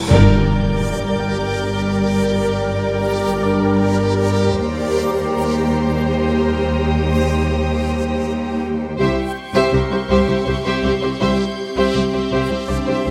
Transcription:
Already playing: B4
0.09 G1 G2 G3 G4 A#4 D5 G5 D6 G6, impact
1.20 G5
3.43 D4 D5
4.55 D#2 G3 G4 C5 G5 A#5 C6
6.03 D#6
6.42 A#4
8.97 C2 G3 C4 E4 G4 C5 E5 C6 C#6
9.54 C2 G4 C5 E5
9.72 C2 G4 A#4 C5 E5
9.91 C2 G4 C5 E5
10.10 C2 G4 C5 E5
10.28 C2 G4 C5 E5
10.45 C2 G4 C5 E5 G6
10.64 C2 G4 C5 E5
10.83 C2 G4 C5 E5
11.01 C2 G4 C5 E5
11.19 C2 G3 E4 G4 C5 E5
11.76 C2 G4 C5 E5
11.94 C2 G4 C5 E5
12.13 C2 G4 C5 E5
12.31 C2 G4 C5 E5
12.50 C2 G4 C5 E5
12.68 C2 D4 G4 C5 D5 E5
12.86 C2 G4 C5 E5
13.03 C2 G4 C5

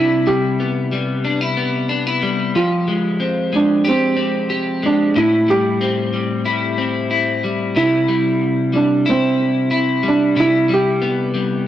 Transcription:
Already playing: C3 G3 E4
0.27 G3 G4
0.60 B3
0.92 G3
1.25 D4
1.41 E4
1.57 B3
1.89 D4
2.07 E4
2.23 G3
2.55 F3 F4 G4
2.88 G#3
3.20 C4
3.53 G#3 D4
3.85 C4 G4
4.17 C4
4.50 G4
4.83 G#3 D4
5.16 A2 E4
5.48 G3 G4
5.81 C4
6.14 G3
6.45 E4
6.78 C4
7.11 E4
7.44 G3
7.76 C3 E4
8.08 G3
8.73 G3 D4
9.06 C4 E4
9.71 E4
10.03 G3
10.08 D4
10.36 C3 E4
10.69 G3
10.74 G4
11.02 B3
11.34 G3

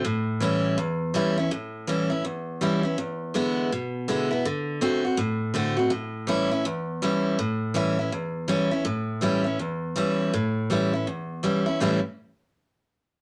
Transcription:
0.05 A2
0.40 E3 G3 C#4 E4
0.78 E2
1.14 E3 G3 C#4 E4
1.38 C#4 E4
1.51 A2
1.87 E3 G3 C#4 E4
2.10 C#4 E4
2.25 E2
2.61 E3 G3 C#4 E4
2.83 C#4 E4
2.98 E2
3.34 D3 G#3 B3 E4
3.72 B2
4.08 D3 G#3 B3 E4
4.31 B3 E4
4.45 D3
4.81 D3 A3 C4 F#4
5.05 C4 F#4
5.17 A2
5.54 D3 A3 C4 F#4
5.77 C4 F#4
5.90 A2
6.27 E3 G3 C#4 E4
6.51 C#4 E4
6.65 E2
7.02 E3 G3 C#4 E4
7.39 A2
7.74 E3 G3 C#4 E4
7.99 C#4 E4
8.12 E2
8.48 E3 G3 C#4 E4
8.71 C#4 E4
8.85 A2
9.21 E3 G3 C#4 E4
9.44 C#4 E4
9.59 E2
9.96 E3 G3 C#4 E4
10.33 A2
10.70 E3 G3 C#4 E4
10.93 C#4 E4
11.07 E2
11.43 E3 G3 C#4 E4
11.66 C#4 E4
11.80 A2 E3 G3 C#4 E4

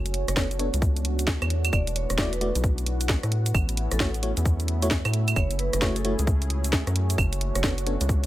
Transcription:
Already playing: F#1 A3 B3 C#4 D4 F#4 C#5 G#5
0.06 closed hi-hat, cabasa
0.14 open hi-hat
0.28 F#1 C#5, cross-stick, closed hi-hat, cabasa
0.36 B3 D4 A4 C#5, kick, snare, cabasa
0.51 open hi-hat, cabasa
0.59 B3 D4 A4 C#5, open hi-hat
0.74 C#2, closed hi-hat, cabasa
0.82 kick, cabasa
0.96 closed hi-hat, cabasa
1.05 open hi-hat
1.19 closed hi-hat, cabasa
1.27 kick, snare, cabasa
1.42 E2, cross-stick, closed hi-hat, cabasa, claves
1.50 B3 E4, open hi-hat
1.65 closed hi-hat, cabasa, claves
1.70 E1 B4 D5, kick, cabasa, claves
1.75 F#5
1.87 closed hi-hat, cabasa
1.96 C#5, open hi-hat
2.10 E1, cross-stick, closed hi-hat, cabasa
2.18 A3 E4 F#4 D5, kick, snare, cabasa
2.33 B4, closed hi-hat, cabasa
2.41 A3 E4 F#4 D5, cross-stick, open hi-hat
2.55 B1, closed hi-hat, cabasa
2.64 kick, cabasa
2.78 closed hi-hat, cabasa
2.86 open hi-hat
3.01 closed hi-hat, cabasa
3.09 kick, snare, cabasa
3.23 A2, cross-stick, closed hi-hat, cabasa
3.32 A3 B3 C#4 E4, open hi-hat
3.46 closed hi-hat, cabasa
3.51 A1 E5, kick, cabasa, claves
3.69 closed hi-hat, cabasa
3.77 open hi-hat
3.91 A1 A4, cross-stick, closed hi-hat, cabasa
4.00 A3 E4 F#4 C#5 B5, kick, snare, cabasa
4.14 open hi-hat, cabasa
4.23 A3 E4 F#4 C#5, open hi-hat
4.37 E2, closed hi-hat, cabasa
4.45 kick, cabasa
4.60 closed hi-hat, cabasa
4.68 open hi-hat
4.82 A3 E4 F#4 C#5, closed hi-hat, cabasa
4.91 kick, snare, cabasa
5.05 A2, cross-stick, closed hi-hat, cabasa, claves
5.14 open hi-hat
5.28 closed hi-hat, cabasa, claves
5.36 F#1 A3 C#4 F#4 G#4 C#5, kick, cabasa, claves
5.51 closed hi-hat, cabasa
5.59 B4 C#5, open hi-hat
5.73 F#1, cross-stick, closed hi-hat, cabasa
5.82 A3 E4 F#4 C#5, kick, snare, cabasa
5.96 A4, closed hi-hat, cabasa
6.05 A3 E4 F#4 C#5 G#5, cross-stick, open hi-hat
6.19 C#2, closed hi-hat, cabasa
6.27 kick, cabasa
6.42 closed hi-hat, cabasa
6.50 open hi-hat
6.64 closed hi-hat, cabasa
6.73 kick, snare, cabasa
6.87 F#2, cross-stick, closed hi-hat, cabasa
6.96 open hi-hat
7.10 closed hi-hat, cabasa
7.18 F#1 B3 D4 F#4, kick, cabasa, claves
7.33 closed hi-hat, cabasa
7.41 open hi-hat
7.55 F#1 C#5, cross-stick, closed hi-hat, cabasa
7.64 B3 D4 A4 C#5, kick, snare, cabasa
7.78 open hi-hat, cabasa
7.86 B3 D4 A4 C#5, open hi-hat
8.01 C#2, closed hi-hat, cabasa
8.09 kick, cabasa

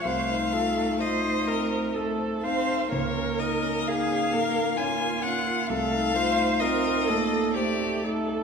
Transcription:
0.04 C2 A3 C5 F5
0.30 D#4
0.53 F4 A4
0.78 D#4
1.01 F4 C5 D#5
1.25 D#4
1.48 C4 A#4
1.72 C5
1.95 A3 A4
2.19 C5
2.43 C4 D#4 C5 F5
2.67 C5
2.91 C#2 A#3 A#4 C#5
3.16 C#4
3.39 D#4 D#5
3.64 C#4
3.87 D#4 G#4 F5
4.11 C#4
4.33 A#3 A#4
4.56 A#4
4.77 C#4 F4 G#5
5.01 A#4
5.22 C#4 F#5
5.46 A#4
5.68 C2 A3 A4 F5
5.93 D#4
6.14 A3 F4 C5
6.39 D#4
6.60 C4 F4 A#4 D#5
7.07 A3 A#3 A4
7.33 A4
7.54 A3 G4 C5 D5
7.80 A4
8.03 D#4 A4
8.28 A4

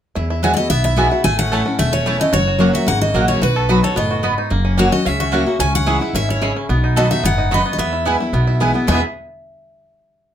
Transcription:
0.15 E2 E4
0.30 E4
0.43 E3 G#3 B3 E4 F#4 C#5 E5 G#5
0.54 E4 F#4 D5 D#5
0.59 B3
0.70 B1 B2 B3 E5
0.84 E4 E5
0.96 E3 G#3 B3 F#4 E5 G#5
1.11 B3 E4 F#4
1.24 A1 A2 A3 G#5
1.39 C#4 F#5
1.52 E3 A3 C#4 E4 A4 C#5 A5
1.65 C#4 E4
1.79 E1 E2 A3 E5
1.93 C#4 C#5
2.06 E3 A3 C#4 E4 C#5 A5
2.20 A3 C#4 E4 D#5
2.33 F#1 F#2 F#4 C#5
2.47 F#4
2.58 F#3 A#3 C#4 F#4 C#5 F#5
2.74 F#4 E5
2.86 G#1 C#3 A#3 F#5
3.01 F#4 D#5
3.14 A#1 F#3 A#3 C#4 F#4 C#5 F#5
3.28 C#4 C#5
3.42 B1 B2 F#4 B4
3.56 A4
3.69 F#3 B3 D#4 F#4 D#5 B5
3.83 D#4 F#4 A4 C#5
3.96 F#1 A2 B3 D#5
4.11 F#4
4.23 G#2 B3 F#4 D#5 B5
4.38 D#4
4.50 F#1 F#2 A#3
4.65 C#4
4.78 F#3 A#3 C#4 F#4 C#5 F#5
4.92 C#4 F#4 D#5
5.05 C#2 C#3 C#4 E5
5.20 F#4 E5
5.32 F#3 A#3 C#4 F#4 C#5 F#5
5.46 A#3 C#4 F#4
5.59 C#2 C#3 C#4 G#5
5.75 F#5
5.86 E3 G#3 D#4 E4 G#4 D#5 C#6
6.01 D#4 E4
6.13 G#1 D#3 C#4 E5
6.29 E4 C#5
6.42 C#3 E4 G#4 D#5 C#6
6.56 C#4
6.69 B1 B2 B3
6.84 D#4
6.96 F#3 B3 D#4 F#4 A4 D#5 B5
7.11 D#4 F#4 E5
7.23 F#1 G#2 B3 F#5
7.38 D#4
7.51 F#2 B3 F#4 D#5 B5
7.66 B3
7.73 D#5
7.78 E2 B3 E5
7.93 E4
8.05 E3 G#3 B3 E4 B4 G#5
8.20 B3 E4
8.33 B1 B2 B3
8.47 E4
8.60 E3 G#3 B3 E4 B4 G#5
8.74 B3 E4
8.87 E2 B2 E3 G#3 B3 E4 B4 E5 G#5
8.92 E4 G#4

